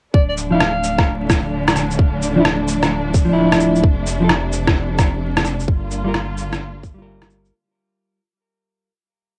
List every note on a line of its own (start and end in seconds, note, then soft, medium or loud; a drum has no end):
0.14 3.82 D1 medium
0.14 3.80 D3 medium
0.14 5.64 F3 medium
0.14 5.64 A3 medium
0.14 5.64 D4 medium
0.14 0.24 D5 medium
0.14 kick loud
0.29 0.34 D5 medium
0.37 shaker medium
0.51 0.60 F3 medium
0.51 0.61 D4 medium
0.51 0.62 E4 medium
0.51 1.15 F5 medium
0.60 cross-stick loud
0.84 shaker medium
0.98 kick loud
0.98 cross-stick medium
1.30 kick loud
1.30 cross-stick medium
1.30 shaker medium
1.68 cross-stick loud
1.68 shaker soft
1.76 cross-stick soft
1.76 shaker medium
1.91 shaker soft
1.99 kick loud
2.22 shaker medium
2.35 2.41 F3 medium
2.35 2.42 D4 medium
2.35 2.43 E4 medium
2.45 cross-stick loud
2.68 shaker medium
2.83 cross-stick medium
2.83 shaker soft
3.14 kick loud
3.14 shaker medium
3.25 3.80 F3 medium
3.29 3.82 D4 medium
3.29 3.84 E4 loud
3.52 cross-stick loud
3.52 shaker soft
3.60 shaker medium
3.75 shaker soft
3.83 5.67 F1 medium
3.83 5.66 C3 medium
3.83 kick loud
4.06 shaker medium
4.20 4.29 F3 medium
4.20 4.24 E4 medium
4.20 4.31 A4 medium
4.29 cross-stick loud
4.52 shaker medium
4.67 kick loud
4.67 cross-stick medium
4.99 kick loud
4.99 cross-stick medium
4.99 shaker medium
5.37 cross-stick loud
5.37 shaker soft
5.45 cross-stick soft
5.45 shaker medium
5.60 shaker soft
5.68 7.51 G1 medium
5.68 7.51 D3 medium
5.68 7.51 G3 medium
5.68 7.51 A#3 medium
5.68 7.51 F4 medium
5.68 kick loud
5.91 shaker medium
6.04 6.10 G3 medium
6.04 6.12 F4 medium
6.04 6.12 A#4 loud
6.14 cross-stick loud
6.38 shaker medium
6.53 cross-stick medium
6.53 shaker soft
6.83 kick loud
6.83 shaker medium
6.94 7.50 G3 medium
6.98 7.52 F4 medium
6.98 7.54 A#4 loud
7.22 cross-stick loud
7.22 shaker soft
7.30 shaker medium
7.45 shaker soft